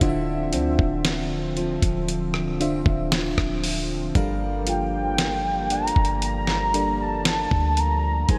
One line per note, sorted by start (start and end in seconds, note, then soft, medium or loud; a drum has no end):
0.00 0.54 D1 loud
0.00 1.63 D3 medium
0.00 4.11 D3 medium
0.00 4.15 D3 medium
0.00 8.25 F3 medium
0.00 0.53 A3 medium
0.00 4.11 C4 medium
0.00 1.63 D4 medium
0.00 4.15 E4 medium
0.00 1.63 F4 medium
0.00 1.64 C5 medium
0.00 0.08 D#5 medium
0.00 4.11 E5 medium
0.00 kick loud
0.00 closed hi-hat medium
0.09 1.67 E5 loud
0.53 0.78 D2 loud
0.53 4.25 C4 medium
0.53 closed hi-hat medium
0.79 1.78 D1 loud
0.79 kick medium
1.05 snare loud
1.05 closed hi-hat medium
1.57 4.15 F3 medium
1.57 closed hi-hat soft
1.82 2.35 D1 loud
1.82 kick loud
1.82 closed hi-hat medium
2.08 closed hi-hat medium
2.34 2.83 C1 loud
2.34 cross-stick medium
2.60 3.81 D3 medium
2.60 3.82 D4 medium
2.60 3.82 F4 medium
2.60 3.82 C5 medium
2.60 3.82 E5 loud
2.60 closed hi-hat medium
2.86 3.35 D1 medium
2.86 kick loud
3.12 snare loud
3.12 closed hi-hat medium
3.38 4.12 D1 loud
3.38 kick medium
3.38 cross-stick loud
3.64 open hi-hat medium
4.15 5.92 G1 loud
4.15 8.28 G3 medium
4.15 5.77 G3 medium
4.15 8.25 G3 medium
4.15 8.25 A#3 medium
4.15 5.77 D4 medium
4.15 5.78 A4 medium
4.15 8.28 A#4 medium
4.15 5.78 A#4 medium
4.15 5.78 F5 loud
4.15 kick loud
4.15 closed hi-hat medium
4.67 8.38 F4 medium
4.67 5.74 G5 loud
4.67 closed hi-hat medium
5.18 snare loud
5.18 closed hi-hat medium
5.70 8.38 D4 medium
5.70 6.23 A#5 loud
5.70 closed hi-hat medium
5.88 closed hi-hat medium
5.96 7.47 G1 loud
5.96 kick medium
6.05 closed hi-hat soft
6.22 7.03 A#5 loud
6.22 closed hi-hat medium
6.47 snare medium
6.74 7.95 G3 medium
6.74 7.95 D4 medium
6.74 7.95 A4 medium
6.74 7.96 A#4 medium
6.74 7.96 D5 medium
6.74 closed hi-hat medium
7.02 7.81 A5 loud
7.25 snare loud
7.25 closed hi-hat medium
7.51 8.26 D2 loud
7.51 kick medium
7.77 8.30 A#5 loud
7.77 closed hi-hat medium
8.29 8.38 G#1 loud
8.29 8.38 G3 medium
8.29 8.38 G#3 medium
8.29 8.38 A#3 medium
8.29 8.38 C4 medium
8.29 8.38 D#4 medium
8.29 8.38 A#4 medium
8.29 8.38 C5 medium
8.29 8.38 G#5 loud
8.29 kick loud
8.29 closed hi-hat medium